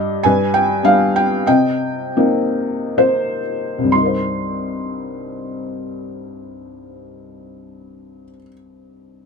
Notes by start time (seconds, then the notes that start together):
Already playing: G2 G4 D#5
0.23 G2 B4 G#5
0.54 G5
0.83 G3 B3 D4 F5
1.16 G5
1.46 C3 D#5 G5
2.17 A#3 C4 D#4
2.98 C5
3.78 C2
3.84 G2
3.89 G3 C6
3.95 D#4
4.01 A#4
4.06 C5